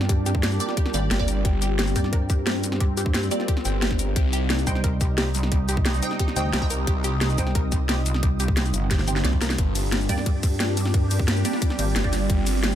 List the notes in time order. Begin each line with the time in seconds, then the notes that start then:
Already playing: G2 G3 C4 D4 F4 G4 A#4 D5
0.01 snare
0.09 G4, kick, closed hi-hat
0.26 G4, closed hi-hat, shaker
0.35 kick
0.43 G4, snare, closed hi-hat
0.52 shaker
0.60 A#3 G4 D5, closed hi-hat, shaker
0.69 snare
0.77 G4, kick, closed hi-hat
0.86 snare
0.94 G#1 A#3 G4 D5 G5, closed hi-hat, shaker
1.11 G1 G4, snare, closed hi-hat
1.19 A#3 G4 D5, kick
1.28 A#4, closed hi-hat, shaker
1.45 G1 C4 G4, kick, closed hi-hat
1.62 G4, closed hi-hat, shaker
1.79 G4, snare, closed hi-hat
1.87 shaker
1.96 G2 A#3 G4 D5 G5, kick, closed hi-hat, shaker
2.04 snare
2.13 A#4, kick, closed hi-hat
2.30 G4, kick, closed hi-hat, shaker
2.47 G4, snare, closed hi-hat
2.64 closed hi-hat, shaker
2.72 snare
2.80 G4, kick, closed hi-hat
2.97 G4, closed hi-hat, shaker
3.06 kick
3.14 G4, snare, closed hi-hat
3.23 shaker
3.31 A#3 G4 D5, closed hi-hat, shaker
3.40 snare
3.48 G4, kick, closed hi-hat
3.57 snare
3.65 G1 G5, closed hi-hat, shaker
3.82 G4, snare, closed hi-hat
3.91 kick, snare
3.99 A#4, closed hi-hat, shaker
4.16 C2 C3 C4 D#4 G4, kick, closed hi-hat
4.28 F4
4.33 G4, closed hi-hat, shaker
4.50 G4 D#6, snare, closed hi-hat
4.58 shaker
4.67 C2 D#4 C5 G5, kick, closed hi-hat, shaker
4.75 snare
4.84 A#4, kick, closed hi-hat
5.01 G4, kick, closed hi-hat, shaker
5.18 G4, snare, closed hi-hat
5.35 closed hi-hat, shaker
5.43 snare
5.52 G4, kick, closed hi-hat
5.69 G4, closed hi-hat, shaker
5.77 kick
5.86 G4, snare, closed hi-hat
5.94 shaker
6.03 D#4 C5 G5, closed hi-hat, shaker
6.11 snare
6.19 G4, kick, closed hi-hat
6.28 snare
6.36 D2 D#4 C5 G5, closed hi-hat, shaker
6.53 C2 G4, snare, closed hi-hat
6.62 D#4 C5 G5, kick
6.70 A#4, closed hi-hat, shaker
6.87 C2 G4, kick, closed hi-hat
7.04 G4, closed hi-hat, shaker
7.21 G4, snare, closed hi-hat
7.30 shaker
7.38 C2 D#4 C5 G5, kick, closed hi-hat, shaker
7.47 snare
7.55 A#4, kick, closed hi-hat
7.72 G4, kick, closed hi-hat, shaker
7.89 G4, snare, closed hi-hat
8.06 closed hi-hat, shaker
8.14 snare
8.23 G4, kick, closed hi-hat
8.40 G4, closed hi-hat, shaker
8.48 kick
8.57 G4, snare, closed hi-hat
8.65 shaker
8.74 G1, closed hi-hat, shaker
8.91 G4, kick, snare, closed hi-hat
8.99 snare
9.08 D#4 G4 C5 G5, closed hi-hat, shaker
9.16 snare
9.25 C2 D5, snare, closed hi-hat
9.33 kick
9.41 C2 A#4, snare, closed hi-hat, shaker
9.50 snare, shaker
9.58 G1 G3 D4 G4, kick, closed hi-hat
9.71 A#4
9.75 closed hi-hat, ride, shaker
9.92 snare, closed hi-hat
10.01 shaker
10.09 G2 A#3 G4 D5, kick, closed hi-hat, ride, shaker
10.18 snare
10.26 kick, closed hi-hat
10.43 kick, closed hi-hat, ride, shaker
10.60 snare, closed hi-hat
10.77 closed hi-hat, ride, shaker
10.86 snare
10.94 kick, closed hi-hat
11.11 closed hi-hat, ride, shaker
11.19 kick
11.28 snare, closed hi-hat
11.36 shaker
11.45 A#3 G4 D5, closed hi-hat, ride, shaker
11.53 snare
11.62 kick, closed hi-hat
11.70 snare
11.79 G#1 A#3 G4 D5, closed hi-hat, ride, shaker
11.96 G1, snare, closed hi-hat
12.04 A#3 G4 D5, kick
12.13 C5, snare, closed hi-hat, ride, shaker
12.30 G1 C4, kick, closed hi-hat
12.47 closed hi-hat, ride, shaker
12.64 snare, closed hi-hat